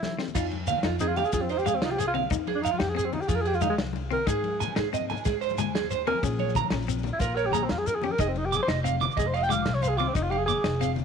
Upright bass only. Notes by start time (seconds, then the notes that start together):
Already playing: E3
0.35 F2
0.84 F2
1.33 F2
1.83 C2
2.31 F2
2.81 F2
3.29 F2
3.78 C2
4.27 G#2
4.77 G#2
5.26 G#2
5.75 D#2
6.23 A#1
6.72 A#1
7.20 A#1
7.70 F2
8.19 F1
8.68 F1
9.18 F1
9.65 C2
10.15 F1
10.64 F1